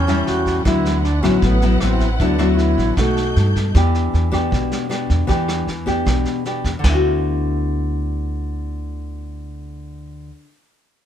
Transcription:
Already playing: E2 E3 C#4 A4 G6
0.07 G3 C#4 E4, snare
0.26 E2 F#4, snare
0.46 kick, snare
0.64 D2 D3 F#3 B3 E4 B4 F#5, kick, cross-stick, snare
0.85 snare
1.03 D4, snare
1.21 A1 F#3 B3 C#4 E4, kick, cross-stick, snare
1.41 A1 A2 B3, kick, snare
1.61 F#3 B3 E4, snare
1.80 A1 F#3 B3 C4 E4, cross-stick, snare
2.00 kick, snare
2.19 D2 D3 F#3 B3 D4 E4, kick, snare
2.39 F#3 B3 E4, cross-stick, snare
2.52 F#4
2.57 E4, snare
2.78 A1, kick, snare
2.97 B1 B2 A3 D#4 F#4 A4 G6, kick, cross-stick, snare
3.17 snare
3.36 G2, snare
3.55 kick, snare
3.75 E2 E3 B3 D4 G4, kick, cross-stick, snare
3.94 snare
4.14 E2, snare
4.31 B3 D4 G4, kick, cross-stick, snare
4.51 B1 B2, kick, snare
4.71 snare
4.89 B3 D4 G4, cross-stick, snare
5.10 E2, kick, snare
5.27 E2 E3 B3 D4 G4, kick, snare
5.48 cross-stick, snare
5.68 E2, snare
5.86 B3 D4 G4, kick, snare
6.06 B1 B2, kick, cross-stick, snare
6.25 snare
6.45 B3 D4 G4, snare
6.64 E2, kick, snare
6.79 D3
6.84 D2 B3, kick, snare, china
6.89 E4
6.94 F#4

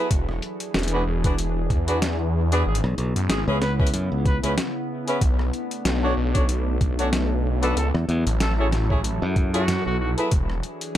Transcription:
0.10 E1 E3 D4 G#4, kick, closed hi-hat
0.29 cross-stick
0.42 closed hi-hat
0.60 closed hi-hat
0.74 E1, snare, closed hi-hat
0.79 closed hi-hat
0.83 closed hi-hat
0.88 closed hi-hat
0.92 B3 D4 F#4 G#4 B4
1.07 E1
1.24 B3 D4 F#4 G#4 B4, kick, closed hi-hat
1.38 closed hi-hat
1.70 E2, kick, closed hi-hat
1.88 B3 D4 F#4 G#4 B4, closed hi-hat
2.02 snare, closed hi-hat
2.51 B3 D4 F#4 G#4 B4, closed hi-hat
2.66 G#1 C#3 B3 E4 G#4
2.75 closed hi-hat
2.84 B1, cross-stick
2.98 B1, closed hi-hat
3.16 F#2, closed hi-hat
3.30 G#1 G#4, snare, closed hi-hat
3.48 C#2 B3 C#4 E4 G#4 B4
3.62 B4, cross-stick, snare, closed hi-hat
3.80 B3 C#4 E4 G#4 B4, kick
3.87 closed hi-hat
3.94 F#2, closed hi-hat
4.12 C#2
4.26 B4, kick, closed hi-hat
4.43 C#2 B3 C#4 E4 G#4 B4, closed hi-hat
4.58 snare, closed hi-hat
5.07 B3 C#4 E4 G#4 B4, closed hi-hat
5.21 B1 A3 D4, kick, closed hi-hat
5.39 cross-stick
5.53 closed hi-hat
5.71 closed hi-hat
5.85 B1, snare, closed hi-hat
6.03 C#4 D4 F#4 A4 C#5
6.17 B1
6.35 C#4 D4 F#4 A4 C#5, kick, closed hi-hat
6.49 closed hi-hat
6.81 B1, kick, closed hi-hat
6.99 C#4 D4 F#4 A4 C#5, closed hi-hat
7.13 snare, closed hi-hat
7.63 B3 D4 F#4 A4 B4, closed hi-hat
7.76 C#2 F#3 E4 A4, closed hi-hat
7.94 E2, cross-stick
8.09 E2, closed hi-hat
8.26 A1, closed hi-hat
8.40 A4, snare, closed hi-hat
8.58 C#4 E4 G#4 A4 C#5
8.72 cross-stick, snare, closed hi-hat
8.90 C#4 E4 G#4 A4 C#5, kick
9.04 closed hi-hat
9.22 F#2
9.36 kick, closed hi-hat
9.54 C#4 E4 F#4 G#4 A4 C#5, closed hi-hat
9.68 F#2, snare, closed hi-hat
9.86 B1 F#4
10.00 F#4
10.17 B3 E4 G#4 A4 B4, closed hi-hat
10.31 E1 E3 D4 G#4, kick, closed hi-hat
10.50 cross-stick
10.63 closed hi-hat
10.81 closed hi-hat

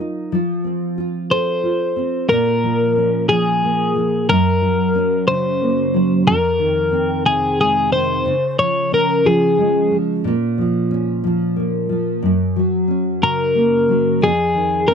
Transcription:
Already playing: F#3 F4 A#4
0.00 D#4
0.32 F3
0.64 C4
0.98 F4
1.30 A4 C5
1.63 F4
1.96 C4
2.29 A#2 A#4
2.64 F3
2.96 C#4
3.29 F3 G#4
3.63 A#3
3.96 F3
4.29 F#2 A#4
4.61 F#3
4.95 C#4
5.28 C#3 C5
5.61 A#3
5.94 F#3
6.27 F2 A#4
6.59 D#3
6.92 C4
7.26 C3 G#4
7.60 G#3 G#4
7.93 D#3 C5
8.26 C#3
8.59 F3 C#5
8.92 C#4 A#4
9.25 F3 G#4
9.58 G#3
9.91 F3
10.24 A#2
10.58 F3
10.91 C#4
11.24 F3
11.56 A#3
11.89 F3
12.23 F#2
12.56 F#3
12.88 C#4
13.22 C#3 A#4
13.55 A#3
13.89 F#3
14.21 F2 G#4
14.55 D#3
14.88 C4 A#4

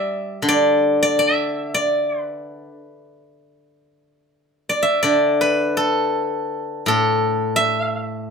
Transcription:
Already playing: G3 D5 E5 G5 A5
0.42 D3
0.49 D5
1.03 D5
1.19 E5
1.74 D5
2.22 B4
4.69 D5
4.83 E5
5.03 D3 D5
5.41 B4
5.77 A4
6.86 A2 A4
7.56 E5

